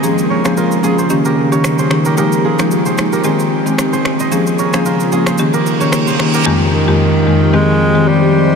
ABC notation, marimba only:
X:1
M:4/4
L:1/16
Q:"Swing 16ths" 1/4=112
K:Fm
V:1 name="Marimba"
[F,B,DA]3 [F,B,DA] z2 [F,B,DA] z [E,B,DG] z2 [E,B,DG]3 [E,B,DG]2 | [F,A,B,EG]3 [F,A,B,EG] z2 [F,A,B,EG] z [E,A,CG] z2 [E,A,CG] z4 | [F,B,DA]3 [F,B,DA] z2 [F,B,DA] z [E,B,DG] z2 [E,B,DG]3 [E,B,DG]2 | [F,,E,A,B,G]3 [F,,E,A,B,G] z2 [F,,E,A,B,G] z [E,A,CG] z2 [E,A,CG] z4 |]